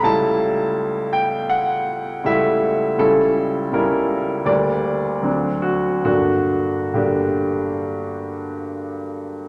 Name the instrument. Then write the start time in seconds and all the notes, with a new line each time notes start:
grand piano
0.03 C#2 G3 A3 E4 A5
1.13 G5
1.50 F#5
2.24 C#2 G3 A3 E4 E5
2.98 C#2 G3 C#4 E4 A4
3.72 C#2 G3 C#4 E4 A#4
4.45 D2 G3 A#3 D4 D5
5.21 D2 F#3 C4 D4
5.62 F#4
6.04 G2 D3 A#3 D4 F#4
6.94 G2 D3 A#3 D4 G4